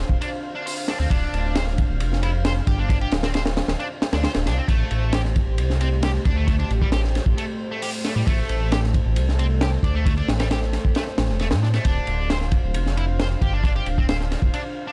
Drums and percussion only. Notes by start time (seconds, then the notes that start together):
0.09 kick
0.22 ride
0.67 open hi-hat
0.78 ride
0.88 snare, ride
1.10 kick, ride
1.34 ride
1.55 snare, ride
1.67 snare
1.78 kick, ride
2.00 ride
2.13 snare
2.23 ride
2.45 snare, ride
2.67 kick, ride
2.89 kick, ride
3.01 ride
3.11 snare, ride
3.23 snare, ride
3.34 snare, ride
3.46 snare, ride
3.57 snare, ride
3.68 snare, ride
3.80 ride
4.02 snare, ride
4.13 snare, ride
4.24 snare, ride
4.34 snare, ride
4.46 snare, ride
4.68 kick, ride
4.91 ride
5.12 snare, ride
5.25 snare
5.36 kick, ride
5.58 ride
5.70 snare
5.81 ride
6.03 snare, ride
6.25 kick, ride
6.48 kick, ride
6.60 ride
6.70 ride
6.82 kick
6.92 snare, ride
7.04 snare
7.15 snare, ride
7.26 kick
7.38 ride
7.82 open hi-hat
7.94 ride
8.04 snare, ride
8.27 kick, ride
8.49 ride
8.72 snare, ride
8.83 snare
8.94 kick, ride
9.16 ride
9.29 snare
9.39 ride
9.61 snare, ride
9.83 kick, ride
10.06 kick, ride
10.17 ride
10.28 snare, ride
10.40 snare, ride
10.51 snare, ride
10.62 snare
10.73 snare, ride
10.85 kick
10.95 snare, ride
11.07 snare
11.18 snare, ride
11.29 snare
11.39 snare, ride
11.51 snare, ride
11.63 snare
11.74 snare, ride
11.85 kick, ride
12.07 ride
12.30 snare, ride
12.41 snare
12.51 kick, ride
12.74 ride
12.86 snare
12.97 ride
13.20 snare, ride
13.41 kick, ride
13.64 kick, ride
13.76 ride
13.86 ride
13.98 kick
14.09 snare, ride
14.21 snare
14.32 snare, ride
14.42 kick
14.54 ride